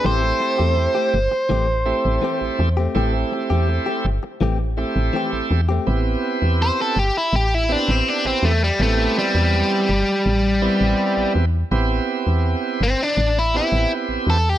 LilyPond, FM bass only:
\new Staff \with { instrumentName = "FM bass" } { \clef bass \time 4/4 \key a \minor \tempo 4 = 82 a,,8 r16 e,8 r16 g,,16 r16 a,,8. a,,16 r16 a,,16 e,8 | a,,8 r16 e,8 r16 g,,16 r16 a,,8. a,,16 r16 a,,16 e,8 | a,,8 r16 e,8 r16 g,,16 r16 a,,8. a,,16 r16 a,,16 e,8 | a,,8 r16 e,8 r16 g,,16 r16 a,,8. a,,16 r16 a,,16 e,8 |
a,,8 r16 e,8 r16 g,,16 r16 a,,8. a,,16 r16 a,,16 e,8 | }